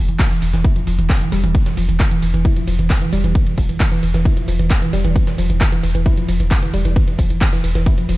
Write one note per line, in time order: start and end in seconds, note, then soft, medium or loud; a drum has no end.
0.08 0.19 E1 medium
0.08 0.14 E3 medium
0.08 closed hi-hat medium
0.19 0.25 E3 medium
0.19 kick loud
0.19 snare loud
0.19 clap loud
0.19 closed hi-hat medium
0.19 ride medium
0.31 0.40 E3 loud
0.31 snare soft
0.31 open hi-hat medium
0.42 0.53 E1 loud
0.42 0.46 E3 medium
0.42 open hi-hat loud
0.42 ride medium
0.53 0.64 E1 medium
0.53 0.62 E3 loud
0.53 snare medium
0.53 closed hi-hat medium
0.64 0.68 E4 loud
0.64 kick loud
0.64 closed hi-hat medium
0.64 ride medium
0.76 0.87 E1 medium
0.76 0.85 F3 medium
0.76 closed hi-hat medium
0.87 0.98 E1 loud
0.87 0.96 F3 medium
0.87 open hi-hat loud
0.87 ride medium
0.99 1.09 E1 medium
0.99 1.04 E3 medium
0.99 closed hi-hat medium
1.10 1.19 D3 medium
1.10 kick loud
1.10 snare loud
1.10 clap loud
1.10 closed hi-hat medium
1.10 ride loud
1.21 1.32 E1 medium
1.21 1.30 E3 loud
1.21 closed hi-hat medium
1.32 1.43 E1 loud
1.32 1.36 G3 loud
1.32 snare medium
1.32 open hi-hat loud
1.32 ride medium
1.44 1.55 E1 medium
1.44 1.52 E3 loud
1.44 closed hi-hat medium
1.44 ride soft
1.55 1.58 E3 loud
1.55 kick loud
1.55 closed hi-hat medium
1.55 ride medium
1.66 1.77 E1 medium
1.66 1.72 E3 medium
1.66 snare medium
1.66 closed hi-hat medium
1.66 ride medium
1.77 1.88 E1 loud
1.77 1.86 F3 medium
1.77 open hi-hat loud
1.77 ride medium
1.89 2.00 E1 medium
1.89 1.95 E3 medium
1.89 closed hi-hat medium
1.89 ride medium
2.00 2.06 E3 medium
2.00 kick loud
2.00 snare loud
2.00 clap loud
2.00 closed hi-hat medium
2.00 ride medium
2.11 2.20 E3 loud
2.11 closed hi-hat medium
2.11 ride medium
2.22 2.33 E1 loud
2.22 2.26 E3 medium
2.22 open hi-hat loud
2.22 ride medium
2.34 2.45 E1 medium
2.34 2.43 E3 loud
2.34 closed hi-hat medium
2.34 ride medium
2.34 ride soft
2.45 2.49 E4 loud
2.45 kick loud
2.45 closed hi-hat medium
2.45 ride medium
2.56 2.67 E1 medium
2.56 2.65 F3 medium
2.56 closed hi-hat medium
2.56 ride medium
2.67 2.78 E1 loud
2.67 2.77 F3 medium
2.67 open hi-hat loud
2.67 ride medium
2.79 2.90 E1 medium
2.79 2.85 E3 medium
2.79 closed hi-hat medium
2.79 ride medium
2.90 2.99 D3 medium
2.90 kick loud
2.90 snare loud
2.90 clap loud
2.90 closed hi-hat medium
2.90 ride medium
3.01 3.12 E1 medium
3.01 3.10 E3 loud
3.01 closed hi-hat medium
3.01 ride medium
3.13 3.23 E1 medium
3.13 3.16 G3 loud
3.13 open hi-hat loud
3.13 ride medium
3.24 3.35 E1 medium
3.24 3.33 E3 loud
3.24 closed hi-hat medium
3.24 ride medium
3.35 kick loud
3.35 closed hi-hat medium
3.35 ride medium
3.47 3.57 E1 medium
3.47 3.53 E3 medium
3.47 closed hi-hat medium
3.47 ride medium
3.58 3.69 E1 loud
3.58 3.67 F3 medium
3.58 kick medium
3.58 open hi-hat loud
3.58 open hi-hat medium
3.58 ride medium
3.69 3.80 E1 medium
3.69 3.75 E3 medium
3.69 closed hi-hat medium
3.69 ride medium
3.80 3.86 E3 medium
3.80 kick loud
3.80 snare loud
3.80 clap loud
3.80 closed hi-hat medium
3.80 ride medium
3.92 4.01 E3 loud
3.92 snare soft
3.92 open hi-hat medium
3.92 ride medium
4.03 4.14 E1 loud
4.03 4.07 E3 medium
4.03 open hi-hat loud
4.03 ride medium
4.14 4.25 E1 medium
4.14 4.23 E3 loud
4.14 snare medium
4.14 closed hi-hat medium
4.14 ride medium
4.25 4.29 E4 loud
4.25 kick loud
4.25 closed hi-hat medium
4.25 ride medium
4.37 4.47 E1 medium
4.37 4.46 F3 medium
4.37 closed hi-hat medium
4.37 ride medium
4.48 4.59 E1 loud
4.48 4.57 F3 medium
4.48 open hi-hat loud
4.48 ride medium
4.59 4.70 E1 medium
4.59 4.65 E3 medium
4.59 closed hi-hat medium
4.59 ride medium
4.71 4.80 D3 medium
4.71 kick loud
4.71 snare loud
4.71 clap loud
4.71 closed hi-hat medium
4.71 ride medium
4.82 4.93 E1 medium
4.82 4.91 E3 loud
4.82 closed hi-hat medium
4.82 ride medium
4.93 5.04 E1 loud
4.93 4.97 G3 loud
4.93 snare medium
4.93 open hi-hat loud
4.93 ride medium
5.05 5.15 E1 medium
5.05 5.13 E3 loud
5.05 closed hi-hat medium
5.05 ride medium
5.05 ride soft
5.16 5.19 E3 loud
5.16 kick loud
5.16 closed hi-hat medium
5.16 ride medium
5.27 5.38 E1 medium
5.27 5.33 E3 medium
5.27 snare medium
5.27 closed hi-hat medium
5.27 ride medium
5.38 5.49 E1 loud
5.38 5.47 F3 medium
5.38 open hi-hat loud
5.38 ride medium
5.50 5.61 E1 medium
5.50 5.56 E3 medium
5.50 closed hi-hat medium
5.50 ride medium
5.61 5.67 E3 medium
5.61 kick loud
5.61 snare loud
5.61 clap loud
5.61 closed hi-hat medium
5.61 ride medium
5.72 5.81 E3 loud
5.72 closed hi-hat medium
5.72 ride medium
5.83 5.94 E1 loud
5.83 5.87 E3 medium
5.83 open hi-hat loud
5.83 ride medium
5.95 6.06 E1 medium
5.95 6.04 E3 loud
5.95 closed hi-hat medium
5.95 ride soft
5.95 ride medium
6.06 6.10 E4 loud
6.06 kick loud
6.06 closed hi-hat medium
6.06 ride medium
6.17 6.28 E1 medium
6.17 6.26 F3 medium
6.17 closed hi-hat medium
6.17 ride medium
6.28 6.39 E1 loud
6.28 6.38 F3 medium
6.28 open hi-hat loud
6.28 ride medium
6.40 6.51 E1 medium
6.40 6.46 E3 medium
6.40 closed hi-hat medium
6.40 ride medium
6.51 6.60 D3 medium
6.51 kick loud
6.51 snare loud
6.51 clap loud
6.51 closed hi-hat medium
6.51 ride medium
6.62 6.73 E1 medium
6.62 6.71 E3 loud
6.62 closed hi-hat medium
6.62 ride medium
6.74 6.84 E1 loud
6.74 6.77 G3 loud
6.74 open hi-hat loud
6.74 ride medium
6.85 6.96 E1 medium
6.85 6.94 E3 loud
6.85 closed hi-hat medium
6.85 ride medium
6.96 7.00 E3 loud
6.96 kick loud
6.96 closed hi-hat medium
6.96 ride medium
7.08 7.18 E1 medium
7.08 7.13 E3 medium
7.08 closed hi-hat medium
7.08 ride medium
7.19 7.30 E1 loud
7.19 7.28 F3 medium
7.19 kick medium
7.19 open hi-hat loud
7.19 open hi-hat medium
7.19 ride medium
7.30 7.41 E1 medium
7.30 7.36 E3 medium
7.30 closed hi-hat medium
7.30 ride medium
7.41 7.47 E3 medium
7.41 kick loud
7.41 snare loud
7.41 clap loud
7.41 closed hi-hat medium
7.41 ride medium
7.53 7.61 E3 loud
7.53 snare soft
7.53 open hi-hat medium
7.53 ride medium
7.64 7.75 E1 loud
7.64 7.67 E3 medium
7.64 open hi-hat loud
7.64 ride medium
7.75 7.86 E1 medium
7.75 7.84 E3 loud
7.75 snare medium
7.75 closed hi-hat medium
7.75 ride medium
7.86 7.90 E4 loud
7.86 kick loud
7.86 closed hi-hat medium
7.86 ride medium
7.98 8.08 E1 medium
7.98 8.07 F3 medium
7.98 closed hi-hat medium
7.98 ride medium
8.09 8.17 E1 loud
8.09 8.17 F3 medium
8.09 open hi-hat loud
8.09 ride medium